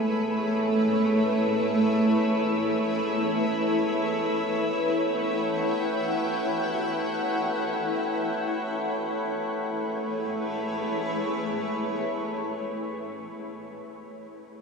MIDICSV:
0, 0, Header, 1, 4, 480
1, 0, Start_track
1, 0, Key_signature, 3, "major"
1, 0, Tempo, 500000
1, 14031, End_track
2, 0, Start_track
2, 0, Title_t, "Violin section"
2, 0, Program_c, 0, 48
2, 0, Note_on_c, 0, 76, 75
2, 0, Note_on_c, 0, 88, 63
2, 8736, Note_off_c, 0, 88, 0
2, 8740, Note_off_c, 0, 76, 0
2, 14031, End_track
3, 0, Start_track
3, 0, Title_t, "Ambient pad"
3, 0, Program_c, 1, 92
3, 0, Note_on_c, 1, 57, 79
3, 0, Note_on_c, 1, 64, 70
3, 0, Note_on_c, 1, 68, 71
3, 0, Note_on_c, 1, 71, 72
3, 0, Note_on_c, 1, 73, 70
3, 3714, Note_off_c, 1, 68, 0
3, 3717, Note_off_c, 1, 57, 0
3, 4084, Note_on_c, 1, 79, 71
3, 4348, Note_on_c, 1, 78, 82
3, 8706, Note_off_c, 1, 78, 0
3, 8709, Note_on_c, 1, 57, 63
3, 8719, Note_off_c, 1, 71, 0
3, 8722, Note_off_c, 1, 79, 0
3, 8728, Note_off_c, 1, 64, 0
3, 8731, Note_off_c, 1, 73, 0
3, 8829, Note_on_c, 1, 64, 68
3, 8957, Note_on_c, 1, 68, 63
3, 9108, Note_on_c, 1, 71, 64
3, 9247, Note_on_c, 1, 73, 73
3, 11928, Note_off_c, 1, 64, 0
3, 11929, Note_off_c, 1, 68, 0
3, 11931, Note_off_c, 1, 57, 0
3, 11942, Note_off_c, 1, 71, 0
3, 11950, Note_off_c, 1, 73, 0
3, 14031, End_track
4, 0, Start_track
4, 0, Title_t, "Harmonium"
4, 0, Program_c, 2, 20
4, 0, Note_on_c, 2, 57, 57
4, 0, Note_on_c, 2, 64, 59
4, 8700, Note_off_c, 2, 64, 0
4, 8705, Note_off_c, 2, 57, 0
4, 8714, Note_on_c, 2, 64, 56
4, 8719, Note_on_c, 2, 57, 51
4, 12017, Note_off_c, 2, 64, 0
4, 12019, Note_off_c, 2, 57, 0
4, 14031, End_track
0, 0, End_of_file